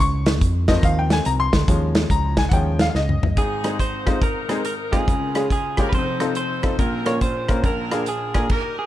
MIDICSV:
0, 0, Header, 1, 6, 480
1, 0, Start_track
1, 0, Key_signature, -4, "major"
1, 0, Tempo, 425532
1, 1892, Time_signature, 4, 2, 24, 8
1, 9995, End_track
2, 0, Start_track
2, 0, Title_t, "Clean electric guitar"
2, 0, Program_c, 0, 27
2, 3814, Note_on_c, 0, 68, 68
2, 4282, Note_off_c, 0, 68, 0
2, 4287, Note_on_c, 0, 72, 74
2, 4767, Note_off_c, 0, 72, 0
2, 4772, Note_on_c, 0, 70, 72
2, 5238, Note_off_c, 0, 70, 0
2, 5252, Note_on_c, 0, 70, 73
2, 5333, Note_off_c, 0, 70, 0
2, 5554, Note_on_c, 0, 68, 73
2, 6162, Note_off_c, 0, 68, 0
2, 6229, Note_on_c, 0, 68, 68
2, 6613, Note_off_c, 0, 68, 0
2, 6645, Note_on_c, 0, 71, 61
2, 6695, Note_off_c, 0, 71, 0
2, 6707, Note_on_c, 0, 72, 79
2, 7168, Note_off_c, 0, 72, 0
2, 7182, Note_on_c, 0, 72, 78
2, 7658, Note_off_c, 0, 72, 0
2, 7662, Note_on_c, 0, 70, 79
2, 7967, Note_off_c, 0, 70, 0
2, 7971, Note_on_c, 0, 73, 89
2, 8129, Note_off_c, 0, 73, 0
2, 8144, Note_on_c, 0, 72, 81
2, 8633, Note_off_c, 0, 72, 0
2, 8637, Note_on_c, 0, 70, 73
2, 9078, Note_off_c, 0, 70, 0
2, 9120, Note_on_c, 0, 68, 75
2, 9410, Note_off_c, 0, 68, 0
2, 9424, Note_on_c, 0, 68, 74
2, 9597, Note_off_c, 0, 68, 0
2, 9605, Note_on_c, 0, 70, 75
2, 9908, Note_off_c, 0, 70, 0
2, 9913, Note_on_c, 0, 68, 73
2, 9995, Note_off_c, 0, 68, 0
2, 9995, End_track
3, 0, Start_track
3, 0, Title_t, "Saxophone section"
3, 0, Program_c, 1, 65
3, 3797, Note_on_c, 1, 68, 76
3, 3805, Note_on_c, 1, 60, 57
3, 3805, Note_on_c, 1, 63, 59
3, 4245, Note_off_c, 1, 68, 0
3, 4281, Note_on_c, 1, 72, 74
3, 4566, Note_off_c, 1, 72, 0
3, 4582, Note_on_c, 1, 72, 74
3, 4718, Note_off_c, 1, 60, 0
3, 4718, Note_off_c, 1, 63, 0
3, 4746, Note_off_c, 1, 72, 0
3, 4769, Note_on_c, 1, 70, 75
3, 4778, Note_on_c, 1, 63, 57
3, 5554, Note_off_c, 1, 70, 0
3, 5560, Note_on_c, 1, 68, 76
3, 5567, Note_on_c, 1, 65, 65
3, 5568, Note_on_c, 1, 61, 63
3, 5687, Note_off_c, 1, 63, 0
3, 6211, Note_off_c, 1, 68, 0
3, 6232, Note_on_c, 1, 68, 77
3, 6477, Note_off_c, 1, 65, 0
3, 6478, Note_off_c, 1, 61, 0
3, 6507, Note_off_c, 1, 68, 0
3, 6539, Note_on_c, 1, 70, 78
3, 6700, Note_off_c, 1, 70, 0
3, 6706, Note_on_c, 1, 63, 57
3, 6711, Note_on_c, 1, 72, 79
3, 6718, Note_on_c, 1, 69, 62
3, 7177, Note_off_c, 1, 63, 0
3, 7179, Note_off_c, 1, 69, 0
3, 7182, Note_off_c, 1, 72, 0
3, 7191, Note_on_c, 1, 63, 60
3, 7192, Note_on_c, 1, 69, 70
3, 7201, Note_on_c, 1, 72, 85
3, 7630, Note_off_c, 1, 63, 0
3, 7631, Note_off_c, 1, 69, 0
3, 7636, Note_off_c, 1, 72, 0
3, 7653, Note_on_c, 1, 65, 66
3, 7664, Note_on_c, 1, 70, 91
3, 7665, Note_on_c, 1, 61, 66
3, 7967, Note_off_c, 1, 70, 0
3, 7977, Note_on_c, 1, 73, 86
3, 8132, Note_off_c, 1, 73, 0
3, 8135, Note_off_c, 1, 65, 0
3, 8148, Note_on_c, 1, 65, 61
3, 8155, Note_on_c, 1, 72, 81
3, 8581, Note_off_c, 1, 61, 0
3, 8592, Note_off_c, 1, 65, 0
3, 8629, Note_off_c, 1, 72, 0
3, 8631, Note_on_c, 1, 62, 60
3, 8635, Note_on_c, 1, 65, 59
3, 8638, Note_on_c, 1, 70, 82
3, 9112, Note_off_c, 1, 70, 0
3, 9118, Note_on_c, 1, 68, 74
3, 9419, Note_off_c, 1, 68, 0
3, 9431, Note_on_c, 1, 68, 77
3, 9547, Note_off_c, 1, 62, 0
3, 9549, Note_off_c, 1, 65, 0
3, 9584, Note_off_c, 1, 68, 0
3, 9602, Note_on_c, 1, 70, 83
3, 9606, Note_on_c, 1, 63, 62
3, 9607, Note_on_c, 1, 67, 61
3, 9995, Note_off_c, 1, 63, 0
3, 9995, Note_off_c, 1, 67, 0
3, 9995, Note_off_c, 1, 70, 0
3, 9995, End_track
4, 0, Start_track
4, 0, Title_t, "Grand piano"
4, 0, Program_c, 2, 0
4, 0, Note_on_c, 2, 85, 97
4, 277, Note_off_c, 2, 85, 0
4, 766, Note_on_c, 2, 51, 59
4, 771, Note_on_c, 2, 75, 93
4, 772, Note_on_c, 2, 53, 55
4, 781, Note_on_c, 2, 60, 67
4, 946, Note_off_c, 2, 75, 0
4, 952, Note_on_c, 2, 77, 85
4, 1109, Note_off_c, 2, 77, 0
4, 1114, Note_on_c, 2, 79, 86
4, 1267, Note_on_c, 2, 80, 102
4, 1269, Note_off_c, 2, 79, 0
4, 1422, Note_on_c, 2, 82, 102
4, 1425, Note_off_c, 2, 80, 0
4, 1478, Note_off_c, 2, 82, 0
4, 1576, Note_on_c, 2, 84, 111
4, 1846, Note_off_c, 2, 51, 0
4, 1848, Note_off_c, 2, 53, 0
4, 1853, Note_off_c, 2, 60, 0
4, 1897, Note_on_c, 2, 53, 53
4, 1900, Note_on_c, 2, 56, 54
4, 1904, Note_on_c, 2, 61, 60
4, 2018, Note_off_c, 2, 84, 0
4, 2379, Note_on_c, 2, 82, 93
4, 2637, Note_off_c, 2, 53, 0
4, 2638, Note_off_c, 2, 56, 0
4, 2641, Note_off_c, 2, 61, 0
4, 2687, Note_off_c, 2, 82, 0
4, 2688, Note_on_c, 2, 80, 102
4, 2743, Note_off_c, 2, 80, 0
4, 2810, Note_on_c, 2, 78, 70
4, 2842, Note_on_c, 2, 53, 52
4, 2845, Note_on_c, 2, 56, 48
4, 2849, Note_off_c, 2, 78, 0
4, 2856, Note_on_c, 2, 79, 85
4, 2857, Note_on_c, 2, 61, 55
4, 3135, Note_off_c, 2, 79, 0
4, 3167, Note_on_c, 2, 77, 91
4, 3199, Note_off_c, 2, 53, 0
4, 3201, Note_off_c, 2, 56, 0
4, 3207, Note_off_c, 2, 61, 0
4, 3251, Note_off_c, 2, 77, 0
4, 3268, Note_on_c, 2, 77, 50
4, 3324, Note_off_c, 2, 77, 0
4, 3336, Note_on_c, 2, 75, 77
4, 3775, Note_off_c, 2, 75, 0
4, 3805, Note_on_c, 2, 44, 54
4, 3807, Note_on_c, 2, 32, 51
4, 4103, Note_on_c, 2, 60, 55
4, 4106, Note_on_c, 2, 56, 61
4, 4108, Note_on_c, 2, 63, 55
4, 4110, Note_on_c, 2, 68, 62
4, 4222, Note_off_c, 2, 60, 0
4, 4223, Note_off_c, 2, 56, 0
4, 4224, Note_off_c, 2, 63, 0
4, 4225, Note_off_c, 2, 68, 0
4, 4579, Note_on_c, 2, 56, 64
4, 4582, Note_on_c, 2, 63, 59
4, 4583, Note_on_c, 2, 60, 60
4, 4586, Note_on_c, 2, 65, 68
4, 4700, Note_off_c, 2, 56, 0
4, 4702, Note_off_c, 2, 60, 0
4, 4702, Note_off_c, 2, 63, 0
4, 4703, Note_off_c, 2, 65, 0
4, 5060, Note_on_c, 2, 56, 66
4, 5062, Note_on_c, 2, 60, 62
4, 5063, Note_on_c, 2, 63, 63
4, 5065, Note_on_c, 2, 68, 69
4, 5181, Note_off_c, 2, 56, 0
4, 5182, Note_off_c, 2, 60, 0
4, 5182, Note_off_c, 2, 63, 0
4, 5183, Note_off_c, 2, 68, 0
4, 5552, Note_on_c, 2, 56, 57
4, 5557, Note_on_c, 2, 63, 52
4, 5558, Note_on_c, 2, 60, 51
4, 5558, Note_on_c, 2, 65, 65
4, 5668, Note_off_c, 2, 56, 0
4, 5670, Note_off_c, 2, 63, 0
4, 5671, Note_off_c, 2, 60, 0
4, 5671, Note_off_c, 2, 65, 0
4, 5680, Note_off_c, 2, 44, 0
4, 5681, Note_off_c, 2, 32, 0
4, 5731, Note_on_c, 2, 37, 52
4, 5733, Note_on_c, 2, 49, 55
4, 6032, Note_on_c, 2, 56, 60
4, 6037, Note_on_c, 2, 61, 54
4, 6041, Note_on_c, 2, 65, 52
4, 6042, Note_on_c, 2, 68, 64
4, 6148, Note_off_c, 2, 56, 0
4, 6151, Note_off_c, 2, 61, 0
4, 6153, Note_off_c, 2, 65, 0
4, 6153, Note_off_c, 2, 68, 0
4, 6522, Note_on_c, 2, 65, 59
4, 6524, Note_on_c, 2, 56, 67
4, 6524, Note_on_c, 2, 61, 60
4, 6529, Note_on_c, 2, 67, 72
4, 6635, Note_off_c, 2, 65, 0
4, 6636, Note_off_c, 2, 56, 0
4, 6636, Note_off_c, 2, 61, 0
4, 6638, Note_off_c, 2, 67, 0
4, 6646, Note_off_c, 2, 37, 0
4, 6648, Note_off_c, 2, 49, 0
4, 6697, Note_on_c, 2, 29, 53
4, 6698, Note_on_c, 2, 41, 50
4, 6998, Note_on_c, 2, 60, 63
4, 7000, Note_on_c, 2, 65, 61
4, 7001, Note_on_c, 2, 63, 59
4, 7002, Note_on_c, 2, 69, 76
4, 7114, Note_off_c, 2, 60, 0
4, 7115, Note_off_c, 2, 65, 0
4, 7116, Note_off_c, 2, 63, 0
4, 7116, Note_off_c, 2, 69, 0
4, 7476, Note_on_c, 2, 60, 61
4, 7480, Note_on_c, 2, 65, 55
4, 7481, Note_on_c, 2, 63, 53
4, 7484, Note_on_c, 2, 69, 65
4, 7594, Note_off_c, 2, 60, 0
4, 7597, Note_off_c, 2, 63, 0
4, 7597, Note_off_c, 2, 65, 0
4, 7599, Note_off_c, 2, 69, 0
4, 7613, Note_off_c, 2, 29, 0
4, 7613, Note_off_c, 2, 41, 0
4, 7661, Note_on_c, 2, 46, 58
4, 7662, Note_on_c, 2, 34, 52
4, 7957, Note_on_c, 2, 58, 60
4, 7959, Note_on_c, 2, 61, 55
4, 7965, Note_on_c, 2, 65, 55
4, 7966, Note_on_c, 2, 70, 68
4, 8077, Note_off_c, 2, 58, 0
4, 8077, Note_off_c, 2, 61, 0
4, 8081, Note_off_c, 2, 65, 0
4, 8081, Note_off_c, 2, 70, 0
4, 8451, Note_on_c, 2, 61, 57
4, 8452, Note_on_c, 2, 58, 64
4, 8452, Note_on_c, 2, 65, 62
4, 8457, Note_on_c, 2, 70, 72
4, 8565, Note_off_c, 2, 61, 0
4, 8566, Note_off_c, 2, 58, 0
4, 8566, Note_off_c, 2, 65, 0
4, 8568, Note_off_c, 2, 70, 0
4, 8579, Note_off_c, 2, 34, 0
4, 8579, Note_off_c, 2, 46, 0
4, 8618, Note_on_c, 2, 34, 52
4, 8618, Note_on_c, 2, 46, 53
4, 8922, Note_on_c, 2, 58, 65
4, 8926, Note_on_c, 2, 65, 60
4, 8927, Note_on_c, 2, 62, 61
4, 8929, Note_on_c, 2, 68, 73
4, 9042, Note_off_c, 2, 58, 0
4, 9044, Note_off_c, 2, 65, 0
4, 9045, Note_off_c, 2, 62, 0
4, 9046, Note_off_c, 2, 68, 0
4, 9418, Note_on_c, 2, 62, 51
4, 9419, Note_on_c, 2, 58, 59
4, 9420, Note_on_c, 2, 65, 53
4, 9425, Note_on_c, 2, 70, 69
4, 9532, Note_off_c, 2, 62, 0
4, 9533, Note_off_c, 2, 58, 0
4, 9533, Note_off_c, 2, 65, 0
4, 9535, Note_off_c, 2, 70, 0
4, 9540, Note_off_c, 2, 34, 0
4, 9540, Note_off_c, 2, 46, 0
4, 9995, End_track
5, 0, Start_track
5, 0, Title_t, "Fingered electric bass"
5, 0, Program_c, 3, 33
5, 0, Note_on_c, 3, 37, 102
5, 466, Note_off_c, 3, 37, 0
5, 466, Note_on_c, 3, 41, 88
5, 869, Note_off_c, 3, 41, 0
5, 938, Note_on_c, 3, 39, 99
5, 1343, Note_off_c, 3, 39, 0
5, 1422, Note_on_c, 3, 36, 91
5, 1678, Note_off_c, 3, 36, 0
5, 1728, Note_on_c, 3, 38, 93
5, 1871, Note_off_c, 3, 38, 0
5, 1895, Note_on_c, 3, 39, 102
5, 2299, Note_off_c, 3, 39, 0
5, 2368, Note_on_c, 3, 37, 94
5, 2773, Note_off_c, 3, 37, 0
5, 2838, Note_on_c, 3, 39, 112
5, 3247, Note_off_c, 3, 39, 0
5, 3321, Note_on_c, 3, 37, 94
5, 3582, Note_off_c, 3, 37, 0
5, 3624, Note_on_c, 3, 31, 89
5, 3773, Note_off_c, 3, 31, 0
5, 9995, End_track
6, 0, Start_track
6, 0, Title_t, "Drums"
6, 294, Note_on_c, 9, 42, 75
6, 299, Note_on_c, 9, 38, 116
6, 407, Note_off_c, 9, 42, 0
6, 412, Note_off_c, 9, 38, 0
6, 467, Note_on_c, 9, 36, 83
6, 469, Note_on_c, 9, 42, 87
6, 580, Note_off_c, 9, 36, 0
6, 582, Note_off_c, 9, 42, 0
6, 768, Note_on_c, 9, 38, 103
6, 772, Note_on_c, 9, 42, 71
6, 775, Note_on_c, 9, 36, 88
6, 881, Note_off_c, 9, 38, 0
6, 885, Note_off_c, 9, 42, 0
6, 888, Note_off_c, 9, 36, 0
6, 938, Note_on_c, 9, 36, 108
6, 945, Note_on_c, 9, 42, 77
6, 1051, Note_off_c, 9, 36, 0
6, 1057, Note_off_c, 9, 42, 0
6, 1245, Note_on_c, 9, 38, 101
6, 1246, Note_on_c, 9, 42, 76
6, 1358, Note_off_c, 9, 38, 0
6, 1359, Note_off_c, 9, 42, 0
6, 1412, Note_on_c, 9, 42, 93
6, 1524, Note_off_c, 9, 42, 0
6, 1725, Note_on_c, 9, 38, 106
6, 1725, Note_on_c, 9, 42, 60
6, 1729, Note_on_c, 9, 36, 91
6, 1838, Note_off_c, 9, 38, 0
6, 1838, Note_off_c, 9, 42, 0
6, 1842, Note_off_c, 9, 36, 0
6, 1896, Note_on_c, 9, 36, 113
6, 1903, Note_on_c, 9, 42, 96
6, 2009, Note_off_c, 9, 36, 0
6, 2016, Note_off_c, 9, 42, 0
6, 2198, Note_on_c, 9, 42, 73
6, 2203, Note_on_c, 9, 38, 110
6, 2311, Note_off_c, 9, 42, 0
6, 2316, Note_off_c, 9, 38, 0
6, 2368, Note_on_c, 9, 36, 78
6, 2375, Note_on_c, 9, 42, 83
6, 2481, Note_off_c, 9, 36, 0
6, 2487, Note_off_c, 9, 42, 0
6, 2673, Note_on_c, 9, 38, 105
6, 2676, Note_on_c, 9, 36, 94
6, 2677, Note_on_c, 9, 42, 71
6, 2786, Note_off_c, 9, 38, 0
6, 2789, Note_off_c, 9, 36, 0
6, 2790, Note_off_c, 9, 42, 0
6, 2837, Note_on_c, 9, 36, 115
6, 2839, Note_on_c, 9, 42, 85
6, 2950, Note_off_c, 9, 36, 0
6, 2952, Note_off_c, 9, 42, 0
6, 3152, Note_on_c, 9, 38, 104
6, 3153, Note_on_c, 9, 42, 78
6, 3265, Note_off_c, 9, 38, 0
6, 3266, Note_off_c, 9, 42, 0
6, 3327, Note_on_c, 9, 38, 58
6, 3440, Note_off_c, 9, 38, 0
6, 3486, Note_on_c, 9, 45, 67
6, 3599, Note_off_c, 9, 45, 0
6, 3644, Note_on_c, 9, 43, 100
6, 3757, Note_off_c, 9, 43, 0
6, 3802, Note_on_c, 9, 36, 100
6, 3803, Note_on_c, 9, 42, 80
6, 3915, Note_off_c, 9, 36, 0
6, 3916, Note_off_c, 9, 42, 0
6, 4106, Note_on_c, 9, 42, 62
6, 4111, Note_on_c, 9, 37, 97
6, 4219, Note_off_c, 9, 42, 0
6, 4224, Note_off_c, 9, 37, 0
6, 4280, Note_on_c, 9, 36, 69
6, 4287, Note_on_c, 9, 42, 77
6, 4393, Note_off_c, 9, 36, 0
6, 4400, Note_off_c, 9, 42, 0
6, 4587, Note_on_c, 9, 37, 89
6, 4591, Note_on_c, 9, 36, 82
6, 4592, Note_on_c, 9, 42, 57
6, 4700, Note_off_c, 9, 37, 0
6, 4704, Note_off_c, 9, 36, 0
6, 4704, Note_off_c, 9, 42, 0
6, 4755, Note_on_c, 9, 36, 97
6, 4760, Note_on_c, 9, 42, 69
6, 4868, Note_off_c, 9, 36, 0
6, 4873, Note_off_c, 9, 42, 0
6, 5067, Note_on_c, 9, 37, 86
6, 5069, Note_on_c, 9, 42, 66
6, 5180, Note_off_c, 9, 37, 0
6, 5182, Note_off_c, 9, 42, 0
6, 5242, Note_on_c, 9, 42, 81
6, 5355, Note_off_c, 9, 42, 0
6, 5558, Note_on_c, 9, 37, 90
6, 5558, Note_on_c, 9, 42, 54
6, 5559, Note_on_c, 9, 36, 82
6, 5671, Note_off_c, 9, 37, 0
6, 5671, Note_off_c, 9, 42, 0
6, 5672, Note_off_c, 9, 36, 0
6, 5728, Note_on_c, 9, 36, 99
6, 5735, Note_on_c, 9, 42, 79
6, 5841, Note_off_c, 9, 36, 0
6, 5848, Note_off_c, 9, 42, 0
6, 6035, Note_on_c, 9, 42, 62
6, 6040, Note_on_c, 9, 37, 100
6, 6148, Note_off_c, 9, 42, 0
6, 6153, Note_off_c, 9, 37, 0
6, 6209, Note_on_c, 9, 36, 73
6, 6216, Note_on_c, 9, 42, 75
6, 6322, Note_off_c, 9, 36, 0
6, 6329, Note_off_c, 9, 42, 0
6, 6513, Note_on_c, 9, 37, 89
6, 6517, Note_on_c, 9, 42, 59
6, 6521, Note_on_c, 9, 36, 78
6, 6625, Note_off_c, 9, 37, 0
6, 6630, Note_off_c, 9, 42, 0
6, 6633, Note_off_c, 9, 36, 0
6, 6685, Note_on_c, 9, 36, 93
6, 6687, Note_on_c, 9, 42, 69
6, 6798, Note_off_c, 9, 36, 0
6, 6800, Note_off_c, 9, 42, 0
6, 6996, Note_on_c, 9, 37, 95
6, 6998, Note_on_c, 9, 42, 69
6, 7109, Note_off_c, 9, 37, 0
6, 7110, Note_off_c, 9, 42, 0
6, 7165, Note_on_c, 9, 42, 84
6, 7278, Note_off_c, 9, 42, 0
6, 7481, Note_on_c, 9, 37, 93
6, 7481, Note_on_c, 9, 42, 55
6, 7488, Note_on_c, 9, 36, 83
6, 7593, Note_off_c, 9, 42, 0
6, 7594, Note_off_c, 9, 37, 0
6, 7600, Note_off_c, 9, 36, 0
6, 7657, Note_on_c, 9, 36, 99
6, 7657, Note_on_c, 9, 42, 85
6, 7770, Note_off_c, 9, 36, 0
6, 7770, Note_off_c, 9, 42, 0
6, 7962, Note_on_c, 9, 42, 64
6, 7967, Note_on_c, 9, 37, 97
6, 8075, Note_off_c, 9, 42, 0
6, 8080, Note_off_c, 9, 37, 0
6, 8136, Note_on_c, 9, 42, 75
6, 8137, Note_on_c, 9, 36, 70
6, 8249, Note_off_c, 9, 42, 0
6, 8250, Note_off_c, 9, 36, 0
6, 8443, Note_on_c, 9, 37, 88
6, 8448, Note_on_c, 9, 42, 62
6, 8450, Note_on_c, 9, 36, 84
6, 8556, Note_off_c, 9, 37, 0
6, 8561, Note_off_c, 9, 42, 0
6, 8563, Note_off_c, 9, 36, 0
6, 8615, Note_on_c, 9, 36, 95
6, 8618, Note_on_c, 9, 42, 72
6, 8727, Note_off_c, 9, 36, 0
6, 8731, Note_off_c, 9, 42, 0
6, 8928, Note_on_c, 9, 37, 92
6, 8930, Note_on_c, 9, 42, 65
6, 9041, Note_off_c, 9, 37, 0
6, 9043, Note_off_c, 9, 42, 0
6, 9095, Note_on_c, 9, 42, 81
6, 9208, Note_off_c, 9, 42, 0
6, 9413, Note_on_c, 9, 37, 95
6, 9413, Note_on_c, 9, 42, 56
6, 9418, Note_on_c, 9, 36, 80
6, 9526, Note_off_c, 9, 37, 0
6, 9526, Note_off_c, 9, 42, 0
6, 9530, Note_off_c, 9, 36, 0
6, 9582, Note_on_c, 9, 49, 73
6, 9586, Note_on_c, 9, 36, 92
6, 9695, Note_off_c, 9, 49, 0
6, 9699, Note_off_c, 9, 36, 0
6, 9995, End_track
0, 0, End_of_file